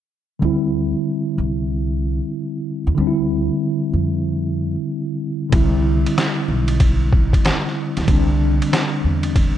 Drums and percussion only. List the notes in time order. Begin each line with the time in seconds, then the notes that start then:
5.52 kick, ride
6.06 ride
6.18 snare, hi-hat pedal, ride
6.68 ride
6.80 kick, ride
7.13 kick
7.33 kick, ride
7.45 snare, hi-hat pedal, ride
7.66 snare
7.97 snare, ride
8.08 kick, ride
8.62 ride
8.73 snare, hi-hat pedal, ride
9.23 ride
9.36 kick, ride